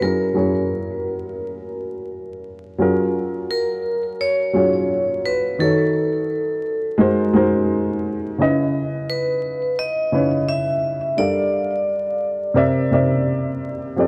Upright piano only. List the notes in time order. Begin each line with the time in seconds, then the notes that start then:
0.00 F#3 C#4 E4 G#4 A#4
0.34 F#3 C#4 E4 G#4 C#5
2.78 F#3 C#4 F4 G#4 A#4
4.53 F#3 C#4 F4 G#4 C#5
5.59 D#3 D#4 F#4 A4 C#5
6.98 G#3 D#4 F#4 A#4 C5
7.33 G#3 D#4 F#4 A#4 C5
8.38 C#3 C#4 D#4 B4 D#5
8.46 E4
10.12 C#3 C#4 E4 B4 C#5
11.17 G3 D4 A4 A#4 F5
12.54 C3 C4 A#4 D5 E5
12.91 C3 C4 A#4 D5 E5
13.96 F3 C4 G4 A4 D5